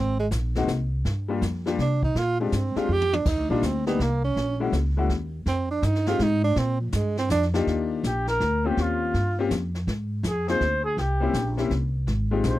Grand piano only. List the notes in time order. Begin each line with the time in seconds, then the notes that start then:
0.56 G#3 A#3 C4 D#4 F#4
1.28 G3 A#3 D4 F4 G4
1.66 G3 A#3 D4 F4 G4
2.40 G#3 C4 D4 F4 G4
2.76 G#3 C4 D4 F4 G4
3.50 G3 A#3 D4 D#4 F4
3.87 G3 A#3 D4 D#4 G4
4.60 G#3 A#3 C#4 E4 F#4
4.97 G#3 A#3 C#4 E4 F#4
6.07 G#3 C4 D#4 F4 G4
7.54 A#3 D4 D#4 F4 G4
8.64 A#3 C4 C#4 F4 G4
9.39 A#3 C4 C#4 F4 G4
10.48 A#3 C4 D#4 F4 G#4
11.20 A#3 C4 C#4 E4 G4
11.57 A#3 C4 C#4 E4 G4
12.31 G#3 C4 D#4 F4 G4